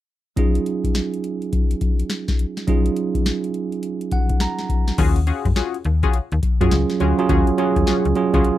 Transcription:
0.36 F#3 C#4 D#4 F4 G#4, kick, closed hi-hat
0.55 closed hi-hat
0.66 closed hi-hat
0.84 kick, closed hi-hat
0.95 snare, closed hi-hat
1.14 closed hi-hat
1.24 closed hi-hat
1.42 closed hi-hat
1.53 kick, closed hi-hat
1.71 closed hi-hat
1.81 kick, closed hi-hat
2.00 closed hi-hat
2.10 snare, closed hi-hat
2.28 kick, snare, closed hi-hat
2.39 closed hi-hat
2.57 snare, closed hi-hat
2.67 F#3 C#4 D#4 F4 G#4, kick, closed hi-hat
2.86 closed hi-hat
2.96 closed hi-hat
3.15 kick, closed hi-hat
3.26 snare, closed hi-hat
3.44 closed hi-hat
3.54 closed hi-hat
3.72 closed hi-hat
3.83 closed hi-hat
4.01 closed hi-hat
4.11 F#5, kick, closed hi-hat
4.29 kick, closed hi-hat
4.40 A#5, snare, closed hi-hat
4.58 snare, closed hi-hat
4.69 kick, closed hi-hat
4.88 snare, closed hi-hat
4.98 D#2 C#4 F4 F#4 G#4, kick, closed hi-hat, crash
5.16 closed hi-hat
5.27 C#4 F4 F#4 G#4, closed hi-hat
5.45 F#2, kick, closed hi-hat
5.56 C#4 F4 F#4 G#4, snare, closed hi-hat
5.74 closed hi-hat
5.85 D#2, closed hi-hat
6.03 C#4 F4 F#4 G#4, kick, closed hi-hat
6.13 closed hi-hat
6.32 D#2, closed hi-hat
6.43 kick, closed hi-hat
6.61 F#2 F#3 C#4 F4 F#4 G#4, kick, closed hi-hat
6.71 C#2, snare, closed hi-hat
6.90 snare, closed hi-hat
7.00 D2 F#3 C#4 F4 F#4 G#4, closed hi-hat
7.18 F#3 C#4 F4 G#4, closed hi-hat
7.29 D#2 C#4 F4 F#4 G#4, kick, closed hi-hat
7.47 closed hi-hat
7.58 F#3 C#4 F4 F#4 G#4, closed hi-hat
7.76 D#2, kick, closed hi-hat
7.87 C#4 F4 F#4 G#4, snare, closed hi-hat
8.05 C#2, closed hi-hat
8.15 F#3 C#4 F4 G#4, closed hi-hat
8.34 C#2 F#3 C#4 F4 F#4 G#4, kick, closed hi-hat
8.44 closed hi-hat

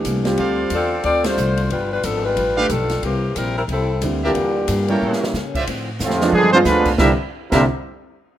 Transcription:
Already playing: E3 A3 D4 G4
0.04 C2 C3 G3 A#3 E4, kick, hi-hat pedal, ride
0.25 G3 C4 F4 G4, snare, ride
0.37 D2 D3 A3 C4 F4 A4 C5 D5 F5, kick, ride
0.70 E2 D3 A3 C4 F4 A4, kick, hi-hat pedal, ride
0.74 C4 D4 F4
1.04 D2 D3 A3 C4 F4 A4 D5, kick, ride
1.24 G3 A3 C4 D4 F4 A4 C5, snare, ride
1.37 C2 D3 A3 C4 F4, hi-hat pedal
1.57 ride
1.70 G1 G2 F3 G3 B3 D4 F4 B4, kick, ride
1.92 G3 D4 F4 B4
2.03 G#1 G2 F3 B3 D4 A4, kick, hi-hat pedal, ride
2.24 G3 D4 F4 B4
2.36 A1 G2 F3 B3 D4, kick, ride
2.57 A3 D4 G4 B4 D5 F5
2.69 B1 G2 F3 G3 B3 D4 F4 A4, kick, hi-hat pedal, ride
2.89 snare, ride
3.02 C2 C3 E3 G3 A#3 C4 E4 G4, kick, ride
3.36 A#1 C3 G3 A#3 C4 E4 A#4, kick, hi-hat pedal, ride
3.56 G3 C4 E4 A#4
3.67 C2 C3 G3 A#3 C4 E4 A4, kick, ride
4.01 D2 C3 D3 G3 A#3 C4 E4, kick, hi-hat pedal, ride
4.23 A#2 D3 E3 G3 A#3 D4 G4 A#4 D5 E5
4.35 E2 E3 A#3 D4 G4, kick, ride
4.68 G2 E3 A#3 D4 G4, kick, hi-hat pedal, ride
4.88 G3 A#3 C#4 E4 A4 A#4 C#5 G5, ride
5.01 A2 G3 A#3 C#4
5.13 snare
5.24 snare
5.34 A2 C#3 G3 A#3 C#4, snare, hi-hat pedal
5.55 F4 C5 D5 E5, kick, crash
5.67 A2 D3 F3 C4 E4, kick, ride
5.99 F2 D3 F3 C4 E4, snare, hi-hat pedal
6.04 A2 C3 F3 A3 C4 F4
6.10 snare
6.21 F3 G#3 B3 D4, snare
6.32 G2 D3 F3 G3 G#3 B3 D4 F4 G#4, high tom
6.43 high tom
6.53 F3 G#3 B3 C4 D4 F4 C5, high tom
6.65 D2 D3 F3 G3 G#3 B3 D4 F4 G#4 B4, snare, hi-hat pedal
6.85 kick, crash
6.98 C2 C3 D3 G3 A#3 C4 D4 E4 G4 A4 A#4 E5, kick, snare
7.50 C2 C3 D3 G3 A#3 C4 D4 E4 G4 A4 A#4 E5, kick, snare, crash

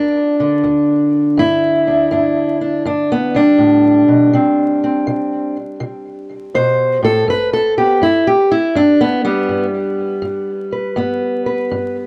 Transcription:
Already playing: D2 D4
0.40 D3
0.63 D2
1.37 G2 E4
1.87 D4
2.11 G2 D4
2.61 D4
2.85 G2 D4
3.12 B3
3.35 G3 D4
3.58 A2
4.08 B2
4.33 C3 C4
4.84 C4
5.07 C3
5.80 C3
6.54 B2 C5
7.03 A2 A4
7.28 G2 B4
7.53 A4
7.78 B3 G4
8.02 G2 E4
8.27 G4
8.51 E4
8.75 G2 D4
9.01 B3
9.25 G3 B3
9.49 G2
10.22 G2
10.72 B4
10.96 G2 B3
11.46 B4
11.71 G2

